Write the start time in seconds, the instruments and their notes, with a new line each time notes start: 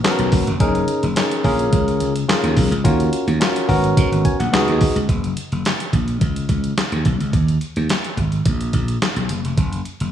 0.04 tine electric piano B3 C#4 F#4 A4, snare, clap, closed hi-hat
0.11 tine electric piano A#4
0.19 slap bass B1, closed hi-hat
0.32 slap bass F#1, kick, open hi-hat
0.47 slap bass F1, closed hi-hat
0.60 slap bass F#1, tine electric piano C#4 D#4 G#4 A#4, kick, closed hi-hat
0.75 closed hi-hat
0.88 closed hi-hat
1.03 slap bass F#1, closed hi-hat
1.16 tine electric piano C#4 D#4 G#4 A#4, snare, clap, closed hi-hat
1.31 closed hi-hat
1.44 slap bass A#1, tine electric piano C#4 F4 G#4 A#4, kick, open hi-hat
1.59 closed hi-hat
1.73 slap bass C#2, kick, closed hi-hat
1.88 closed hi-hat
2.00 slap bass C#2, closed hi-hat
2.16 closed hi-hat
2.28 tine electric piano C#4 F4 G#4 A#4, snare, clap, closed hi-hat
2.43 slap bass D#2, closed hi-hat
2.57 slap bass B1, kick, open hi-hat
2.71 slap bass C#2, closed hi-hat
2.84 slap bass D#2, tine electric piano C#4 F4 F#4 A#4, kick, closed hi-hat
3.00 closed hi-hat
3.13 closed hi-hat
3.27 slap bass D#2, closed hi-hat
3.40 tine electric piano C#4 F4 F#4 A#4, snare, clap, closed hi-hat
3.56 closed hi-hat
3.68 slap bass G#1, tine electric piano B3 C#4 F#4 A#4, kick, open hi-hat
3.84 closed hi-hat
3.97 slap bass G#2, kick, closed hi-hat
4.12 slap bass G#1, closed hi-hat
4.25 tine electric piano G#5, kick, closed hi-hat
4.40 slap bass A#1, tine electric piano F#5, closed hi-hat
4.53 slap bass C#2, tine electric piano B3 D#4 F#4 G#4 D#5, snare, clap, closed hi-hat
4.68 slap bass D#2, closed hi-hat
4.81 kick, open hi-hat
4.96 slap bass C#2, closed hi-hat
5.09 slap bass F#1, kick, closed hi-hat
5.24 closed hi-hat
5.37 closed hi-hat
5.52 slap bass F#1, closed hi-hat
5.65 snare, clap, closed hi-hat
5.80 closed hi-hat
5.93 slap bass A#1, kick, closed hi-hat
6.08 closed hi-hat
6.21 slap bass C#2, kick, closed hi-hat
6.36 closed hi-hat
6.49 slap bass C#2, kick, closed hi-hat
6.64 closed hi-hat
6.78 snare, clap, closed hi-hat
6.92 slap bass D#2, closed hi-hat
7.05 slap bass B1, kick, closed hi-hat
7.20 slap bass C#2, closed hi-hat
7.33 slap bass D#2, kick, closed hi-hat
7.48 closed hi-hat
7.61 closed hi-hat
7.76 slap bass D#2, closed hi-hat
7.89 snare, clap, closed hi-hat
8.04 closed hi-hat
8.17 slap bass G#1, kick, closed hi-hat
8.32 closed hi-hat
8.45 slap bass A#1, kick, closed hi-hat
8.61 closed hi-hat
8.73 slap bass A#1, kick, closed hi-hat
8.88 closed hi-hat
9.02 snare, clap, closed hi-hat
9.16 slap bass B1, closed hi-hat
9.29 slap bass F#1, closed hi-hat
9.45 slap bass F1, closed hi-hat
9.57 slap bass F#1, kick, closed hi-hat
9.73 closed hi-hat
9.85 closed hi-hat
10.00 slap bass F#1, closed hi-hat